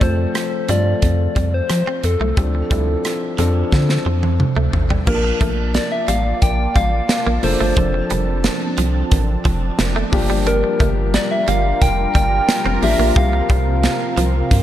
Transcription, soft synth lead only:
0.03 C5
0.70 D5
1.54 C5
2.05 A4
5.08 A#4
5.75 D5
5.92 E5
6.08 F5
6.42 G5
6.76 F5
7.44 C5
10.47 A#4
11.15 D5
11.31 E5
11.49 F5
11.82 G5
12.16 G5
12.83 E5
13.17 F5

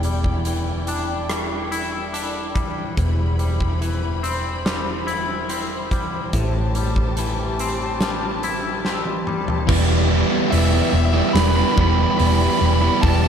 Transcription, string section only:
Already playing: E4 D5 G5
2.98 C5 B5
6.34 G4 A5
9.68 E4 G4 D5

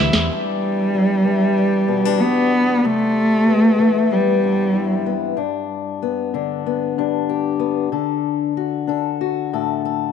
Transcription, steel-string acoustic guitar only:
Already playing: G2 E3 B3
0.00 E4
0.30 E2 E3 G3 D4 G4
0.94 G3
1.24 E3 D4
1.58 G3
1.88 B2 B3
2.05 D4
2.22 G4
2.54 G3
2.84 C3 C4
3.48 B3
3.79 E3 C4
4.11 B3
4.43 G2 C4
4.74 E4
5.06 B3
5.36 G2 D4
6.02 B3
6.34 D3 D4
6.66 B3
6.98 G2 D4
7.29 G4
7.59 B3
7.92 D3 A4
8.57 F#4
8.87 D4 A4
9.21 F#4
9.53 A2 A4
9.85 A4

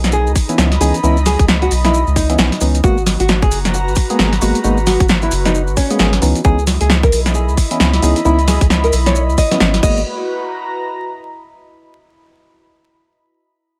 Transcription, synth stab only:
0.49 E3 B3 C#4 E4
0.58 E3 B3 C#4 E4
0.81 E3 B3 C#4 D#4
1.03 E3 B3 C#4 D#4
2.30 E3 B3 C#4 E4
2.39 E3 B3 C#4 E4
2.61 E3 B3 C#4 D#4
2.84 G#3 A#3 B3 F#4
4.10 G#3 A#3 B3 G#4
4.19 G#3 A#3 B3 G#4
4.42 G#3 A#3 B3 F#4
4.64 G#3 A#3 B3 F#4
5.91 G#3 A#3 B3 G#4
5.99 G#3 A#3 B3 G#4
6.22 E3 B3 C#4 D#4
6.45 E3 B3 C#4 D#4
7.71 E3 B3 C#4 E4
7.80 E3 B3 C#4 E4
8.02 E3 B3 C#4 D#4
8.25 E3 B3 C#4 D#4
9.51 E3 B3 C#4 E4
9.61 E3 B3 C#4 E4
9.83 G#3 A#3 B3 F#4

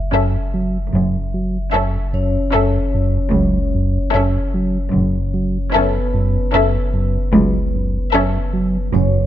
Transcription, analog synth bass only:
0.12 F#2
0.54 F#3
0.93 F#2
1.34 F#3
1.73 F#2
2.13 F#2
2.55 F#2
2.94 F#2
3.35 F#3
3.75 F#2
4.14 F#2
4.54 F#3
4.94 F#2
5.34 F#3
5.75 F#2
6.14 F#2
6.54 F#2
6.94 F#2
7.34 F#3
7.74 F#2
8.14 F#2
8.53 F#3
8.94 F#2

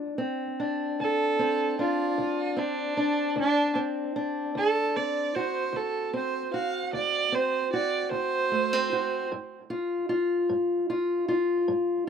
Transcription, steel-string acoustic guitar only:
Already playing: D2 D4
0.18 C4
0.60 D4
1.00 D2
1.39 C4
1.79 D4
2.18 D2
2.57 C4
2.97 D4
3.36 D2
3.75 C4
4.16 D4
4.55 D2
4.96 C4
5.36 F#4
5.73 D2
6.13 C4
6.54 F#4
6.93 D2
7.32 C4
7.73 F#4
8.11 D2
8.52 A3
8.73 C4
8.93 F#4
9.32 G2
9.70 F4
10.09 F4
10.49 G2
10.90 F4
11.28 F4
11.68 G2

